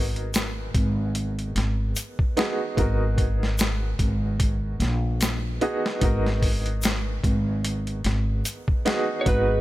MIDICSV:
0, 0, Header, 1, 6, 480
1, 0, Start_track
1, 0, Key_signature, 5, "minor"
1, 0, Tempo, 810811
1, 1641, Time_signature, 4, 2, 24, 8
1, 5689, End_track
2, 0, Start_track
2, 0, Title_t, "Analog synth pad"
2, 0, Program_c, 0, 89
2, 5476, Note_on_c, 0, 68, 79
2, 5478, Note_on_c, 0, 78, 73
2, 5479, Note_on_c, 0, 75, 76
2, 5689, Note_off_c, 0, 68, 0
2, 5689, Note_off_c, 0, 75, 0
2, 5689, Note_off_c, 0, 78, 0
2, 5689, End_track
3, 0, Start_track
3, 0, Title_t, "Electric slide guitar"
3, 0, Program_c, 1, 29
3, 5452, Note_on_c, 1, 73, 66
3, 5485, Note_off_c, 1, 73, 0
3, 5495, Note_on_c, 1, 71, 90
3, 5689, Note_off_c, 1, 71, 0
3, 5689, End_track
4, 0, Start_track
4, 0, Title_t, "Upright piano"
4, 0, Program_c, 2, 0
4, 0, Control_c, 2, 64, 127
4, 0, Note_on_c, 2, 59, 69
4, 0, Note_on_c, 2, 63, 63
4, 0, Note_on_c, 2, 66, 60
4, 0, Note_on_c, 2, 68, 99
4, 0, Note_on_c, 2, 70, 78
4, 1374, Note_off_c, 2, 59, 0
4, 1377, Note_off_c, 2, 63, 0
4, 1380, Note_off_c, 2, 66, 0
4, 1382, Note_off_c, 2, 70, 0
4, 1401, Note_on_c, 2, 59, 88
4, 1405, Note_on_c, 2, 63, 77
4, 1407, Note_on_c, 2, 66, 81
4, 1411, Note_off_c, 2, 68, 0
4, 1411, Note_on_c, 2, 68, 97
4, 1616, Note_off_c, 2, 59, 0
4, 1618, Note_off_c, 2, 63, 0
4, 1619, Note_off_c, 2, 66, 0
4, 1621, Note_off_c, 2, 68, 0
4, 1636, Note_on_c, 2, 59, 67
4, 1641, Note_on_c, 2, 63, 64
4, 1646, Note_on_c, 2, 66, 65
4, 1650, Note_on_c, 2, 70, 78
4, 3293, Note_off_c, 2, 59, 0
4, 3296, Note_off_c, 2, 63, 0
4, 3299, Note_off_c, 2, 66, 0
4, 3300, Note_off_c, 2, 70, 0
4, 3323, Note_on_c, 2, 59, 93
4, 3324, Note_on_c, 2, 63, 84
4, 3327, Note_on_c, 2, 66, 86
4, 3330, Note_on_c, 2, 68, 97
4, 3537, Note_off_c, 2, 59, 0
4, 3538, Note_off_c, 2, 63, 0
4, 3539, Note_off_c, 2, 66, 0
4, 3541, Note_off_c, 2, 68, 0
4, 3555, Note_on_c, 2, 59, 72
4, 3560, Note_on_c, 2, 63, 68
4, 3568, Note_on_c, 2, 66, 66
4, 3572, Note_on_c, 2, 70, 77
4, 5213, Note_off_c, 2, 59, 0
4, 5215, Note_off_c, 2, 63, 0
4, 5219, Note_off_c, 2, 66, 0
4, 5222, Note_off_c, 2, 70, 0
4, 5241, Note_on_c, 2, 59, 88
4, 5243, Note_on_c, 2, 63, 79
4, 5247, Note_on_c, 2, 66, 84
4, 5251, Note_on_c, 2, 68, 94
4, 5456, Note_off_c, 2, 59, 0
4, 5457, Note_off_c, 2, 63, 0
4, 5459, Note_off_c, 2, 66, 0
4, 5461, Note_off_c, 2, 68, 0
4, 5474, Note_on_c, 2, 59, 72
4, 5480, Note_on_c, 2, 63, 64
4, 5485, Note_on_c, 2, 66, 66
4, 5490, Note_on_c, 2, 71, 81
4, 5689, Note_off_c, 2, 59, 0
4, 5689, Note_off_c, 2, 63, 0
4, 5689, Note_off_c, 2, 66, 0
4, 5689, Note_off_c, 2, 71, 0
4, 5689, End_track
5, 0, Start_track
5, 0, Title_t, "Upright bass"
5, 0, Program_c, 3, 32
5, 0, Note_on_c, 3, 32, 91
5, 420, Note_off_c, 3, 32, 0
5, 441, Note_on_c, 3, 32, 83
5, 901, Note_off_c, 3, 32, 0
5, 921, Note_on_c, 3, 32, 74
5, 1136, Note_off_c, 3, 32, 0
5, 1645, Note_on_c, 3, 32, 93
5, 2343, Note_off_c, 3, 32, 0
5, 2364, Note_on_c, 3, 32, 88
5, 2823, Note_off_c, 3, 32, 0
5, 2840, Note_on_c, 3, 34, 90
5, 3300, Note_off_c, 3, 34, 0
5, 3562, Note_on_c, 3, 32, 92
5, 4261, Note_off_c, 3, 32, 0
5, 4285, Note_on_c, 3, 32, 82
5, 4743, Note_off_c, 3, 32, 0
5, 4763, Note_on_c, 3, 32, 74
5, 4977, Note_off_c, 3, 32, 0
5, 5484, Note_on_c, 3, 32, 91
5, 5689, Note_off_c, 3, 32, 0
5, 5689, End_track
6, 0, Start_track
6, 0, Title_t, "Drums"
6, 96, Note_on_c, 9, 42, 42
6, 155, Note_off_c, 9, 42, 0
6, 201, Note_on_c, 9, 42, 90
6, 202, Note_on_c, 9, 82, 67
6, 212, Note_on_c, 9, 38, 107
6, 260, Note_off_c, 9, 42, 0
6, 261, Note_off_c, 9, 82, 0
6, 271, Note_off_c, 9, 38, 0
6, 441, Note_on_c, 9, 36, 89
6, 441, Note_on_c, 9, 42, 65
6, 500, Note_off_c, 9, 36, 0
6, 500, Note_off_c, 9, 42, 0
6, 681, Note_on_c, 9, 42, 83
6, 740, Note_off_c, 9, 42, 0
6, 821, Note_on_c, 9, 42, 42
6, 880, Note_off_c, 9, 42, 0
6, 923, Note_on_c, 9, 42, 60
6, 933, Note_on_c, 9, 38, 45
6, 982, Note_off_c, 9, 42, 0
6, 993, Note_off_c, 9, 38, 0
6, 1159, Note_on_c, 9, 82, 69
6, 1163, Note_on_c, 9, 42, 80
6, 1218, Note_off_c, 9, 82, 0
6, 1222, Note_off_c, 9, 42, 0
6, 1296, Note_on_c, 9, 36, 87
6, 1355, Note_off_c, 9, 36, 0
6, 1404, Note_on_c, 9, 42, 57
6, 1415, Note_on_c, 9, 38, 108
6, 1463, Note_off_c, 9, 42, 0
6, 1474, Note_off_c, 9, 38, 0
6, 1642, Note_on_c, 9, 36, 107
6, 1645, Note_on_c, 9, 42, 86
6, 1701, Note_off_c, 9, 36, 0
6, 1704, Note_off_c, 9, 42, 0
6, 1882, Note_on_c, 9, 36, 88
6, 1883, Note_on_c, 9, 42, 62
6, 1941, Note_off_c, 9, 36, 0
6, 1942, Note_off_c, 9, 42, 0
6, 2031, Note_on_c, 9, 38, 41
6, 2090, Note_off_c, 9, 38, 0
6, 2122, Note_on_c, 9, 82, 81
6, 2126, Note_on_c, 9, 42, 90
6, 2137, Note_on_c, 9, 38, 115
6, 2182, Note_off_c, 9, 82, 0
6, 2185, Note_off_c, 9, 42, 0
6, 2196, Note_off_c, 9, 38, 0
6, 2363, Note_on_c, 9, 36, 88
6, 2364, Note_on_c, 9, 42, 65
6, 2422, Note_off_c, 9, 36, 0
6, 2423, Note_off_c, 9, 42, 0
6, 2603, Note_on_c, 9, 36, 104
6, 2603, Note_on_c, 9, 42, 85
6, 2662, Note_off_c, 9, 36, 0
6, 2663, Note_off_c, 9, 42, 0
6, 2843, Note_on_c, 9, 42, 63
6, 2854, Note_on_c, 9, 38, 37
6, 2902, Note_off_c, 9, 42, 0
6, 2913, Note_off_c, 9, 38, 0
6, 3083, Note_on_c, 9, 42, 78
6, 3086, Note_on_c, 9, 82, 75
6, 3093, Note_on_c, 9, 38, 108
6, 3142, Note_off_c, 9, 42, 0
6, 3145, Note_off_c, 9, 82, 0
6, 3152, Note_off_c, 9, 38, 0
6, 3323, Note_on_c, 9, 42, 61
6, 3382, Note_off_c, 9, 42, 0
6, 3468, Note_on_c, 9, 38, 49
6, 3527, Note_off_c, 9, 38, 0
6, 3560, Note_on_c, 9, 42, 83
6, 3562, Note_on_c, 9, 36, 105
6, 3620, Note_off_c, 9, 42, 0
6, 3621, Note_off_c, 9, 36, 0
6, 3709, Note_on_c, 9, 38, 36
6, 3768, Note_off_c, 9, 38, 0
6, 3803, Note_on_c, 9, 36, 84
6, 3804, Note_on_c, 9, 46, 76
6, 3862, Note_off_c, 9, 36, 0
6, 3863, Note_off_c, 9, 46, 0
6, 3941, Note_on_c, 9, 42, 41
6, 4000, Note_off_c, 9, 42, 0
6, 4038, Note_on_c, 9, 82, 73
6, 4047, Note_on_c, 9, 42, 85
6, 4057, Note_on_c, 9, 38, 118
6, 4097, Note_off_c, 9, 82, 0
6, 4106, Note_off_c, 9, 42, 0
6, 4116, Note_off_c, 9, 38, 0
6, 4284, Note_on_c, 9, 36, 90
6, 4286, Note_on_c, 9, 42, 60
6, 4343, Note_off_c, 9, 36, 0
6, 4346, Note_off_c, 9, 42, 0
6, 4526, Note_on_c, 9, 42, 83
6, 4585, Note_off_c, 9, 42, 0
6, 4660, Note_on_c, 9, 42, 40
6, 4719, Note_off_c, 9, 42, 0
6, 4762, Note_on_c, 9, 42, 61
6, 4773, Note_on_c, 9, 38, 46
6, 4822, Note_off_c, 9, 42, 0
6, 4832, Note_off_c, 9, 38, 0
6, 5004, Note_on_c, 9, 42, 80
6, 5005, Note_on_c, 9, 82, 70
6, 5063, Note_off_c, 9, 42, 0
6, 5065, Note_off_c, 9, 82, 0
6, 5138, Note_on_c, 9, 36, 87
6, 5197, Note_off_c, 9, 36, 0
6, 5243, Note_on_c, 9, 42, 57
6, 5254, Note_on_c, 9, 38, 105
6, 5303, Note_off_c, 9, 42, 0
6, 5313, Note_off_c, 9, 38, 0
6, 5483, Note_on_c, 9, 36, 100
6, 5483, Note_on_c, 9, 42, 83
6, 5542, Note_off_c, 9, 36, 0
6, 5542, Note_off_c, 9, 42, 0
6, 5689, End_track
0, 0, End_of_file